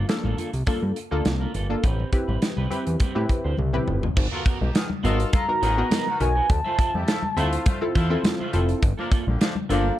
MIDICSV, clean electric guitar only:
0, 0, Header, 1, 3, 480
1, 0, Start_track
1, 0, Tempo, 582524
1, 1515, Time_signature, 4, 2, 24, 8
1, 8233, End_track
2, 0, Start_track
2, 0, Title_t, "Clean electric guitar"
2, 0, Program_c, 0, 27
2, 195, Note_on_c, 0, 69, 80
2, 203, Note_on_c, 0, 65, 73
2, 210, Note_on_c, 0, 58, 63
2, 298, Note_off_c, 0, 58, 0
2, 307, Note_off_c, 0, 65, 0
2, 308, Note_on_c, 0, 58, 52
2, 313, Note_off_c, 0, 69, 0
2, 317, Note_on_c, 0, 65, 58
2, 323, Note_on_c, 0, 69, 61
2, 414, Note_off_c, 0, 58, 0
2, 419, Note_off_c, 0, 65, 0
2, 422, Note_off_c, 0, 69, 0
2, 549, Note_on_c, 0, 58, 80
2, 557, Note_on_c, 0, 65, 80
2, 563, Note_on_c, 0, 69, 101
2, 666, Note_off_c, 0, 69, 0
2, 676, Note_off_c, 0, 65, 0
2, 683, Note_off_c, 0, 58, 0
2, 915, Note_on_c, 0, 69, 67
2, 923, Note_on_c, 0, 65, 64
2, 930, Note_on_c, 0, 58, 51
2, 1010, Note_off_c, 0, 69, 0
2, 1014, Note_off_c, 0, 65, 0
2, 1017, Note_off_c, 0, 58, 0
2, 1155, Note_on_c, 0, 70, 69
2, 1163, Note_on_c, 0, 65, 71
2, 1170, Note_on_c, 0, 58, 58
2, 1259, Note_off_c, 0, 58, 0
2, 1267, Note_off_c, 0, 65, 0
2, 1269, Note_on_c, 0, 58, 60
2, 1275, Note_off_c, 0, 70, 0
2, 1276, Note_on_c, 0, 65, 53
2, 1284, Note_on_c, 0, 69, 74
2, 1375, Note_off_c, 0, 58, 0
2, 1378, Note_off_c, 0, 65, 0
2, 1382, Note_off_c, 0, 69, 0
2, 1511, Note_on_c, 0, 60, 84
2, 1518, Note_on_c, 0, 67, 81
2, 1525, Note_on_c, 0, 71, 78
2, 1735, Note_off_c, 0, 60, 0
2, 1738, Note_off_c, 0, 67, 0
2, 1742, Note_off_c, 0, 71, 0
2, 1877, Note_on_c, 0, 71, 65
2, 1886, Note_on_c, 0, 67, 51
2, 1892, Note_on_c, 0, 60, 44
2, 1971, Note_off_c, 0, 71, 0
2, 1975, Note_off_c, 0, 67, 0
2, 1978, Note_off_c, 0, 60, 0
2, 2118, Note_on_c, 0, 71, 88
2, 2126, Note_on_c, 0, 67, 68
2, 2132, Note_on_c, 0, 60, 66
2, 2220, Note_off_c, 0, 60, 0
2, 2229, Note_off_c, 0, 67, 0
2, 2230, Note_on_c, 0, 60, 60
2, 2237, Note_off_c, 0, 71, 0
2, 2239, Note_on_c, 0, 67, 65
2, 2245, Note_on_c, 0, 71, 71
2, 2335, Note_off_c, 0, 60, 0
2, 2340, Note_off_c, 0, 67, 0
2, 2343, Note_off_c, 0, 71, 0
2, 2469, Note_on_c, 0, 60, 78
2, 2477, Note_on_c, 0, 67, 80
2, 2484, Note_on_c, 0, 71, 87
2, 2588, Note_off_c, 0, 71, 0
2, 2599, Note_off_c, 0, 67, 0
2, 2603, Note_off_c, 0, 60, 0
2, 2837, Note_on_c, 0, 72, 64
2, 2845, Note_on_c, 0, 67, 60
2, 2851, Note_on_c, 0, 60, 56
2, 2930, Note_off_c, 0, 72, 0
2, 2935, Note_off_c, 0, 67, 0
2, 2938, Note_off_c, 0, 60, 0
2, 3557, Note_on_c, 0, 70, 83
2, 3565, Note_on_c, 0, 66, 83
2, 3571, Note_on_c, 0, 59, 70
2, 3660, Note_off_c, 0, 59, 0
2, 3667, Note_off_c, 0, 66, 0
2, 3670, Note_on_c, 0, 59, 60
2, 3674, Note_off_c, 0, 70, 0
2, 3677, Note_on_c, 0, 66, 64
2, 3683, Note_on_c, 0, 70, 76
2, 3775, Note_off_c, 0, 59, 0
2, 3779, Note_off_c, 0, 66, 0
2, 3782, Note_off_c, 0, 70, 0
2, 4146, Note_on_c, 0, 59, 97
2, 4154, Note_on_c, 0, 66, 100
2, 4161, Note_on_c, 0, 70, 99
2, 4268, Note_off_c, 0, 70, 0
2, 4278, Note_off_c, 0, 66, 0
2, 4281, Note_off_c, 0, 59, 0
2, 4627, Note_on_c, 0, 59, 95
2, 4635, Note_on_c, 0, 66, 93
2, 4642, Note_on_c, 0, 70, 98
2, 4753, Note_off_c, 0, 70, 0
2, 4754, Note_off_c, 0, 66, 0
2, 4756, Note_on_c, 0, 71, 68
2, 4762, Note_off_c, 0, 59, 0
2, 4764, Note_on_c, 0, 66, 65
2, 4771, Note_on_c, 0, 59, 56
2, 4850, Note_off_c, 0, 71, 0
2, 4854, Note_off_c, 0, 66, 0
2, 4857, Note_off_c, 0, 59, 0
2, 4868, Note_on_c, 0, 59, 99
2, 4877, Note_on_c, 0, 66, 112
2, 4883, Note_on_c, 0, 71, 111
2, 4992, Note_off_c, 0, 71, 0
2, 4997, Note_off_c, 0, 66, 0
2, 5002, Note_off_c, 0, 59, 0
2, 5236, Note_on_c, 0, 70, 69
2, 5243, Note_on_c, 0, 66, 63
2, 5250, Note_on_c, 0, 59, 59
2, 5330, Note_off_c, 0, 70, 0
2, 5334, Note_off_c, 0, 66, 0
2, 5337, Note_off_c, 0, 59, 0
2, 5475, Note_on_c, 0, 76, 90
2, 5484, Note_on_c, 0, 72, 75
2, 5490, Note_on_c, 0, 65, 71
2, 5578, Note_off_c, 0, 65, 0
2, 5586, Note_off_c, 0, 72, 0
2, 5588, Note_on_c, 0, 65, 67
2, 5593, Note_off_c, 0, 76, 0
2, 5596, Note_on_c, 0, 72, 73
2, 5603, Note_on_c, 0, 76, 75
2, 5694, Note_off_c, 0, 65, 0
2, 5698, Note_off_c, 0, 72, 0
2, 5702, Note_off_c, 0, 76, 0
2, 6070, Note_on_c, 0, 65, 86
2, 6078, Note_on_c, 0, 72, 96
2, 6084, Note_on_c, 0, 76, 99
2, 6189, Note_off_c, 0, 76, 0
2, 6199, Note_off_c, 0, 72, 0
2, 6203, Note_off_c, 0, 65, 0
2, 6550, Note_on_c, 0, 65, 96
2, 6558, Note_on_c, 0, 72, 92
2, 6565, Note_on_c, 0, 76, 85
2, 6669, Note_off_c, 0, 76, 0
2, 6676, Note_off_c, 0, 72, 0
2, 6679, Note_on_c, 0, 76, 67
2, 6683, Note_off_c, 0, 65, 0
2, 6686, Note_on_c, 0, 72, 69
2, 6693, Note_on_c, 0, 65, 62
2, 6772, Note_off_c, 0, 76, 0
2, 6775, Note_off_c, 0, 72, 0
2, 6778, Note_off_c, 0, 65, 0
2, 6918, Note_on_c, 0, 76, 75
2, 6925, Note_on_c, 0, 72, 80
2, 6933, Note_on_c, 0, 65, 60
2, 7021, Note_off_c, 0, 65, 0
2, 7029, Note_off_c, 0, 72, 0
2, 7031, Note_on_c, 0, 65, 61
2, 7037, Note_off_c, 0, 76, 0
2, 7039, Note_on_c, 0, 72, 66
2, 7046, Note_on_c, 0, 76, 65
2, 7136, Note_off_c, 0, 65, 0
2, 7140, Note_off_c, 0, 72, 0
2, 7143, Note_off_c, 0, 76, 0
2, 7396, Note_on_c, 0, 69, 83
2, 7403, Note_on_c, 0, 65, 87
2, 7410, Note_on_c, 0, 58, 77
2, 7499, Note_off_c, 0, 58, 0
2, 7507, Note_off_c, 0, 65, 0
2, 7509, Note_on_c, 0, 58, 82
2, 7513, Note_off_c, 0, 69, 0
2, 7517, Note_on_c, 0, 65, 76
2, 7523, Note_on_c, 0, 69, 78
2, 7614, Note_off_c, 0, 58, 0
2, 7619, Note_off_c, 0, 65, 0
2, 7622, Note_off_c, 0, 69, 0
2, 7989, Note_on_c, 0, 58, 87
2, 7997, Note_on_c, 0, 65, 83
2, 8004, Note_on_c, 0, 69, 98
2, 8108, Note_off_c, 0, 69, 0
2, 8118, Note_off_c, 0, 65, 0
2, 8123, Note_off_c, 0, 58, 0
2, 8233, End_track
3, 0, Start_track
3, 0, Title_t, "Muted clean electric guitar strokes"
3, 71, Note_on_c, 9, 29, 38
3, 154, Note_off_c, 9, 29, 0
3, 438, Note_on_c, 9, 29, 48
3, 520, Note_off_c, 9, 29, 0
3, 676, Note_on_c, 9, 29, 36
3, 758, Note_off_c, 9, 29, 0
3, 790, Note_on_c, 9, 29, 43
3, 873, Note_off_c, 9, 29, 0
3, 1030, Note_on_c, 9, 29, 37
3, 1112, Note_off_c, 9, 29, 0
3, 1992, Note_on_c, 9, 29, 36
3, 2074, Note_off_c, 9, 29, 0
3, 2358, Note_on_c, 9, 29, 38
3, 2440, Note_off_c, 9, 29, 0
3, 2598, Note_on_c, 9, 29, 39
3, 2680, Note_off_c, 9, 29, 0
3, 2711, Note_on_c, 9, 29, 43
3, 2793, Note_off_c, 9, 29, 0
3, 3078, Note_on_c, 9, 29, 38
3, 3160, Note_off_c, 9, 29, 0
3, 3319, Note_on_c, 9, 29, 39
3, 3401, Note_off_c, 9, 29, 0
3, 3430, Note_on_c, 9, 29, 48
3, 3512, Note_off_c, 9, 29, 0
3, 3911, Note_on_c, 9, 29, 41
3, 3993, Note_off_c, 9, 29, 0
3, 4037, Note_on_c, 9, 29, 50
3, 4119, Note_off_c, 9, 29, 0
3, 4278, Note_on_c, 9, 29, 55
3, 4360, Note_off_c, 9, 29, 0
3, 4996, Note_on_c, 9, 29, 46
3, 5078, Note_off_c, 9, 29, 0
3, 5112, Note_on_c, 9, 29, 41
3, 5194, Note_off_c, 9, 29, 0
3, 5350, Note_on_c, 9, 29, 47
3, 5432, Note_off_c, 9, 29, 0
3, 5717, Note_on_c, 9, 29, 45
3, 5800, Note_off_c, 9, 29, 0
3, 5831, Note_on_c, 9, 29, 43
3, 5914, Note_off_c, 9, 29, 0
3, 5957, Note_on_c, 9, 29, 39
3, 6039, Note_off_c, 9, 29, 0
3, 6199, Note_on_c, 9, 29, 37
3, 6281, Note_off_c, 9, 29, 0
3, 6312, Note_on_c, 9, 29, 45
3, 6394, Note_off_c, 9, 29, 0
3, 6439, Note_on_c, 9, 29, 41
3, 6521, Note_off_c, 9, 29, 0
3, 6790, Note_on_c, 9, 29, 55
3, 6872, Note_off_c, 9, 29, 0
3, 7159, Note_on_c, 9, 29, 47
3, 7241, Note_off_c, 9, 29, 0
3, 7272, Note_on_c, 9, 29, 47
3, 7354, Note_off_c, 9, 29, 0
3, 7637, Note_on_c, 9, 29, 39
3, 7720, Note_off_c, 9, 29, 0
3, 7751, Note_on_c, 9, 29, 51
3, 7834, Note_off_c, 9, 29, 0
3, 7878, Note_on_c, 9, 29, 43
3, 7961, Note_off_c, 9, 29, 0
3, 8118, Note_on_c, 9, 29, 51
3, 8200, Note_off_c, 9, 29, 0
3, 8233, End_track
0, 0, End_of_file